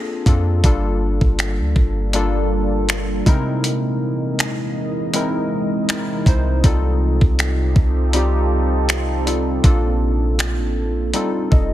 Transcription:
0.00 0.26 A#3 medium
0.00 0.27 C4 medium
0.00 0.28 D4 medium
0.00 0.28 F4 medium
0.00 0.66 G#4 medium
0.00 0.29 A4 medium
0.26 0.62 F2 medium
0.26 0.53 A#3 medium
0.26 0.53 C4 medium
0.26 0.54 D4 medium
0.26 0.54 F4 medium
0.26 0.54 A4 medium
0.26 kick loud
0.26 closed hi-hat medium
0.64 1.19 G1 loud
0.64 1.67 G3 medium
0.64 3.24 G3 medium
0.64 3.24 A#3 medium
0.64 1.68 A#3 medium
0.64 3.24 D4 medium
0.64 1.68 D4 medium
0.64 3.24 F4 medium
0.64 1.68 F4 medium
0.64 3.24 A4 medium
0.64 1.69 A4 medium
0.64 kick loud
0.64 closed hi-hat medium
1.21 1.61 G1 loud
1.21 kick medium
1.39 finger snap loud
1.39 closed hi-hat medium
1.59 1.75 D2 loud
1.76 3.22 G1 loud
1.76 kick medium
2.13 2.91 G3 medium
2.13 2.91 A#3 medium
2.13 2.92 D4 medium
2.13 2.92 F4 medium
2.13 2.92 A4 loud
2.13 closed hi-hat medium
2.89 finger snap loud
2.89 closed hi-hat medium
3.26 5.47 C3 loud
3.26 9.60 C3 medium
3.26 5.86 E3 medium
3.26 4.47 G#3 medium
3.26 6.61 G#3 medium
3.26 6.61 A#3 medium
3.26 4.47 C4 medium
3.26 4.47 D#4 medium
3.26 4.48 E4 medium
3.26 4.48 A#4 medium
3.26 6.61 D#5 medium
3.26 kick loud
3.26 closed hi-hat medium
3.64 closed hi-hat medium
4.39 finger snap loud
4.39 closed hi-hat medium
5.14 5.87 G#3 medium
5.14 5.88 C4 medium
5.14 5.89 D#4 medium
5.14 5.89 E4 medium
5.14 5.90 A#4 medium
5.14 closed hi-hat medium
5.89 6.19 G#3 medium
5.89 6.20 C4 medium
5.89 6.20 D#4 medium
5.89 6.20 E4 medium
5.89 6.21 A#4 loud
5.89 finger snap loud
5.89 closed hi-hat medium
6.26 6.62 C2 loud
6.26 6.53 G#3 medium
6.26 6.53 C4 medium
6.26 6.53 D#4 medium
6.26 6.54 E4 medium
6.26 6.54 C5 medium
6.26 kick loud
6.26 closed hi-hat medium
6.64 7.19 C2 loud
6.64 7.67 G3 medium
6.64 9.61 C4 medium
6.64 7.68 C4 medium
6.64 9.61 D#4 medium
6.64 7.68 D#4 medium
6.64 9.61 F4 medium
6.64 7.68 F4 medium
6.64 9.61 G4 medium
6.64 9.61 A4 medium
6.64 7.68 A4 loud
6.64 kick loud
6.64 closed hi-hat medium
7.21 7.74 C2 loud
7.21 kick medium
7.39 finger snap loud
7.39 closed hi-hat medium
7.76 9.60 C2 loud
7.76 kick medium
8.13 8.91 G3 medium
8.13 8.91 C4 medium
8.13 8.91 D#4 medium
8.13 8.92 F4 medium
8.13 8.92 G4 loud
8.13 closed hi-hat medium
8.89 finger snap loud
8.89 closed hi-hat medium
9.26 9.53 G3 medium
9.26 9.53 C4 medium
9.26 9.53 D#4 medium
9.26 9.54 F4 medium
9.26 9.54 A4 medium
9.26 closed hi-hat medium
9.63 10.61 A#1 loud
9.63 10.67 A#3 medium
9.63 11.12 A#3 medium
9.63 10.67 C4 medium
9.63 11.12 D4 medium
9.63 10.68 D4 medium
9.63 10.68 F4 medium
9.63 11.12 A4 medium
9.63 10.68 A4 medium
9.63 kick loud
9.63 closed hi-hat medium
10.39 finger snap loud
10.39 closed hi-hat medium
10.59 10.88 A1 loud
10.87 11.13 A#1 loud
11.14 11.73 F3 medium
11.14 11.73 G3 medium
11.14 11.73 C4 medium
11.14 11.73 D#4 medium
11.14 11.73 F4 medium
11.14 11.73 G4 medium
11.14 11.73 A4 medium
11.14 11.50 A4 medium
11.14 closed hi-hat medium
11.51 11.73 F1 loud
11.51 11.73 A4 medium
11.51 11.73 D#5 medium
11.51 kick medium

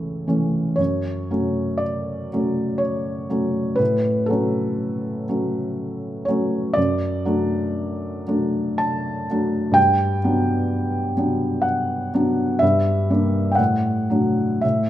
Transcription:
0.00 0.27 E3 soft
0.00 0.28 A3 soft
0.00 0.28 C#4 soft
0.00 0.77 A4 medium
0.27 0.75 E3 soft
0.27 0.75 A3 soft
0.27 0.75 C#4 soft
0.76 1.28 F#2 soft
0.76 1.80 C#5 medium
1.31 2.28 F#3 soft
1.31 2.28 A3 soft
1.31 2.29 C#4 soft
1.78 2.79 D5 medium
2.33 3.27 F#3 soft
2.33 3.27 A3 soft
2.33 3.27 C#4 soft
2.78 3.78 C#5 medium
3.30 3.76 F#3 soft
3.30 3.76 A3 soft
3.30 3.76 C#4 soft
3.76 4.27 A2 soft
3.76 4.27 B4 medium
4.26 5.25 F#3 soft
4.26 5.25 A3 soft
4.26 6.26 A4 medium
4.30 5.25 C#4 soft
5.29 6.24 F#3 soft
5.29 6.24 A3 soft
5.29 6.24 C#4 soft
6.25 6.73 F#3 soft
6.25 6.73 A3 soft
6.25 6.75 C#5 medium
6.29 6.73 C#4 soft
6.73 7.23 F#2 soft
6.73 8.79 D5 medium
7.25 8.23 F#3 soft
7.25 8.23 A3 soft
7.25 8.23 D4 soft
8.27 9.26 F#3 soft
8.27 9.27 A3 soft
8.27 9.27 D4 soft
8.78 9.75 A5 medium
9.30 9.73 F#3 soft
9.30 9.73 A3 soft
9.30 9.73 D4 soft
9.72 10.19 G2 soft
9.72 11.63 G5 medium
10.24 11.13 F#3 soft
10.24 11.13 B3 soft
10.24 11.14 D4 soft
11.17 12.10 F#3 soft
11.17 12.10 B3 soft
11.17 12.10 D4 soft
11.62 12.12 F#5 medium
12.14 12.58 F#3 soft
12.14 12.58 B3 soft
12.14 12.58 D4 soft
12.59 13.08 G2 soft
12.59 13.50 E5 medium
13.10 13.54 G3 soft
13.10 13.55 A#3 soft
13.10 13.55 D4 soft
13.52 14.61 F#5 medium
13.52 13.58 G5 soft
13.58 14.07 A2 soft
14.10 14.59 F#3 soft
14.10 14.59 A3 soft
14.10 14.60 D4 soft
14.61 14.90 A2 soft
14.61 14.90 E5 medium

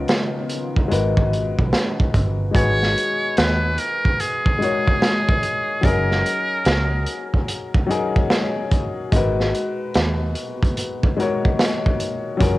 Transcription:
0.00 0.44 C#3 medium
0.00 0.89 D#3 medium
0.00 0.45 G#3 medium
0.00 0.45 B3 medium
0.00 0.89 B3 medium
0.00 2.51 C#4 medium
0.00 0.46 D#4 medium
0.00 0.46 F4 medium
0.00 0.89 F4 medium
0.00 0.47 A#4 loud
0.08 snare loud
0.08 closed hi-hat medium
0.50 closed hi-hat medium
0.77 kick medium
0.88 1.55 G#1 loud
0.88 2.53 B2 medium
0.88 2.09 G#3 medium
0.88 2.09 D#4 medium
0.88 2.53 F#4 medium
0.88 2.10 F#4 medium
0.88 2.11 A#4 medium
0.88 closed hi-hat medium
0.93 2.11 B4 medium
1.17 kick loud
1.33 closed hi-hat medium
1.59 1.72 B1 medium
1.59 kick medium
1.73 snare loud
1.73 closed hi-hat medium
2.00 kick medium
2.14 2.53 G1 medium
2.14 kick medium
2.14 closed hi-hat medium
2.51 3.72 G#3 medium
2.51 3.73 D#4 medium
2.51 3.74 F#4 medium
2.51 3.39 C#5 loud
2.51 kick loud
2.55 2.94 G#1 loud
2.55 3.74 G#4 medium
2.55 3.75 B4 medium
2.55 closed hi-hat medium
2.83 snare soft
2.98 closed hi-hat medium
3.37 3.76 D#2 medium
3.37 3.80 B4 loud
3.37 snare loud
3.37 closed hi-hat medium
3.78 4.22 A#4 loud
3.78 closed hi-hat medium
4.05 kick medium
4.20 5.86 G#4 loud
4.20 closed hi-hat medium
4.46 kick loud
4.58 5.49 G#3 medium
4.58 5.50 D#4 medium
4.58 5.51 F#4 medium
4.58 5.51 A#4 medium
4.58 closed hi-hat medium
4.64 5.52 C#5 medium
4.87 kick medium
5.02 snare loud
5.02 closed hi-hat medium
5.29 kick loud
5.43 closed hi-hat medium
5.81 6.22 F#1 loud
5.81 7.02 F#3 medium
5.81 7.02 C#4 medium
5.81 7.03 D#4 medium
5.81 7.49 A#4 loud
5.81 kick loud
5.81 closed hi-hat medium
5.85 7.04 G#4 medium
5.85 7.04 A#4 medium
6.11 snare soft
6.26 closed hi-hat medium
6.65 7.04 C#2 medium
6.65 snare loud
6.65 closed hi-hat medium
7.06 closed hi-hat medium
7.34 kick medium
7.48 closed hi-hat medium
7.74 kick loud
7.87 8.78 F#3 medium
7.87 8.79 C#4 medium
7.87 8.79 D#4 medium
7.87 8.80 G#4 medium
7.91 8.80 A#4 medium
7.91 closed hi-hat medium
8.16 kick medium
8.30 snare loud
8.30 closed hi-hat medium
8.71 kick medium
8.71 closed hi-hat medium
9.12 9.51 G#1 loud
9.12 12.38 A#2 medium
9.12 12.38 B2 medium
9.12 10.31 G#3 medium
9.12 10.32 D#4 medium
9.12 12.38 F#4 medium
9.12 10.33 F#4 medium
9.12 10.33 A#4 medium
9.12 kick loud
9.12 closed hi-hat loud
9.16 10.34 B4 loud
9.40 snare soft
9.55 closed hi-hat medium
9.94 10.34 D#2 medium
9.94 snare loud
9.94 closed hi-hat medium
10.35 closed hi-hat medium
10.63 kick medium
10.63 closed hi-hat soft
10.77 closed hi-hat medium
11.03 kick loud
11.17 12.07 G#3 medium
11.17 12.08 D#4 medium
11.17 12.09 F#4 medium
11.17 12.09 A#4 medium
11.17 closed hi-hat medium
11.22 12.10 C#5 loud
11.45 kick medium
11.59 snare loud
11.59 closed hi-hat medium
11.86 kick medium
12.00 closed hi-hat medium
12.37 12.58 A#2 medium
12.37 12.58 F#3 medium
12.37 12.58 C#4 medium
12.37 12.58 F4 medium
12.37 12.58 G#4 medium
12.37 kick loud
12.41 12.58 F#1 loud
12.41 12.58 A#4 medium
12.41 closed hi-hat medium

